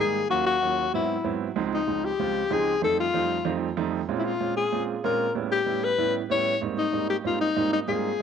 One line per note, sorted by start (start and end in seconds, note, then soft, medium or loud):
0.00 0.20 G#2 medium
0.00 0.20 D#3 medium
0.00 0.20 G3 medium
0.00 0.20 A#3 medium
0.00 0.20 D#4 medium
0.00 0.29 G#4 medium
0.30 0.52 D#2 medium
0.30 0.52 F#3 medium
0.30 0.52 A#3 medium
0.30 0.52 C#4 medium
0.30 0.52 F4 medium
0.30 0.45 F#4 loud
0.46 0.90 F#4 loud
0.62 0.84 D#2 medium
0.62 0.84 F#3 medium
0.62 0.84 A#3 medium
0.62 0.84 C#4 medium
0.62 0.84 F4 medium
0.94 1.15 G#2 medium
0.94 1.15 F#3 medium
0.94 1.15 B3 medium
0.94 1.15 C4 medium
0.94 1.15 E4 medium
0.94 1.38 E4 medium
1.24 1.46 G#2 medium
1.24 1.46 F#3 medium
1.24 1.46 B3 medium
1.24 1.46 C4 medium
1.24 1.47 E4 medium
1.56 1.78 C#2 medium
1.56 1.78 F3 medium
1.56 1.78 G#3 medium
1.56 1.78 C4 medium
1.56 1.78 D#4 medium
1.74 2.07 D#4 medium
1.87 2.09 C#2 medium
1.87 2.09 F3 medium
1.87 2.09 G#3 medium
1.87 2.10 C4 medium
1.87 2.10 D#4 medium
2.05 2.54 G4 loud
2.19 2.41 C#2 medium
2.19 2.41 F3 medium
2.19 2.41 G#3 medium
2.19 2.41 C4 medium
2.19 2.41 F4 medium
2.50 2.73 C#2 medium
2.50 2.73 F3 medium
2.50 2.73 G#3 medium
2.50 2.73 C4 medium
2.50 2.73 D#4 medium
2.50 2.83 G#4 loud
2.82 3.04 F2 medium
2.82 3.04 G3 medium
2.82 3.04 A3 medium
2.82 3.04 C4 medium
2.82 3.04 D#4 medium
2.82 2.98 A4 loud
3.00 3.58 F4 loud
3.14 3.36 F2 medium
3.14 3.36 G3 medium
3.14 3.36 A3 medium
3.14 3.36 C4 medium
3.14 3.36 D#4 medium
3.45 3.67 F2 medium
3.45 3.67 G3 medium
3.45 3.67 A3 medium
3.45 3.67 C4 medium
3.45 3.67 D#4 medium
3.77 3.99 F2 medium
3.77 3.99 G3 medium
3.77 3.99 A3 medium
3.77 3.99 C4 medium
3.77 3.99 D#4 loud
4.08 4.31 A#2 medium
4.08 4.31 G#3 medium
4.08 4.31 C4 medium
4.08 4.31 C#4 medium
4.08 4.31 F4 medium
4.18 4.26 E4 medium
4.25 4.56 F4 medium
4.40 4.62 A#2 medium
4.40 4.62 G#3 medium
4.40 4.62 C4 medium
4.40 4.62 C#4 medium
4.40 4.62 F4 medium
4.57 4.86 G#4 medium
4.72 4.94 A#2 medium
4.72 4.94 G#3 medium
4.72 4.94 C4 medium
4.72 4.94 C#4 medium
4.72 4.94 F4 medium
5.04 5.26 A#2 medium
5.04 5.26 G#3 medium
5.04 5.26 C4 medium
5.04 5.26 C#4 medium
5.04 5.26 F4 medium
5.04 5.33 A#4 medium
5.35 5.57 A2 medium
5.35 5.57 G3 medium
5.35 5.57 B3 medium
5.35 5.57 C#4 medium
5.35 5.57 E4 medium
5.52 5.86 G4 medium
5.66 5.88 A2 medium
5.66 5.88 G3 medium
5.66 5.88 B3 medium
5.66 5.88 C#4 medium
5.66 5.89 E4 medium
5.84 6.15 B4 loud
5.98 6.20 A2 medium
5.98 6.20 G3 medium
5.98 6.20 B3 medium
5.98 6.20 C#4 medium
5.98 6.20 E4 medium
6.30 6.52 A2 medium
6.30 6.52 G3 medium
6.30 6.52 B3 medium
6.30 6.52 C#4 medium
6.30 6.52 E4 medium
6.30 6.60 C#5 loud
6.62 6.83 G#2 medium
6.62 6.84 G3 medium
6.62 6.83 A#3 medium
6.62 6.84 C4 medium
6.62 6.84 D#4 medium
6.78 7.07 D#4 medium
6.92 7.15 G#2 medium
6.92 7.15 G3 medium
6.92 7.15 A#3 medium
6.92 7.15 C4 medium
6.92 7.15 D#4 medium
7.10 7.17 G4 medium
7.24 7.46 G#2 medium
7.24 7.46 G3 medium
7.24 7.46 A#3 medium
7.24 7.46 C4 medium
7.24 7.46 D#4 medium
7.24 7.40 F4 medium
7.41 7.70 D#4 medium
7.56 7.78 G#2 medium
7.56 7.78 G3 medium
7.56 7.78 A#3 medium
7.56 7.78 C4 medium
7.56 7.78 D#4 medium
7.73 7.80 D#4 medium
7.87 8.10 G#2 medium
7.87 8.10 G3 medium
7.87 8.10 A#3 medium
7.87 8.10 C4 medium
7.87 8.10 F4 medium
7.87 8.22 G#4 medium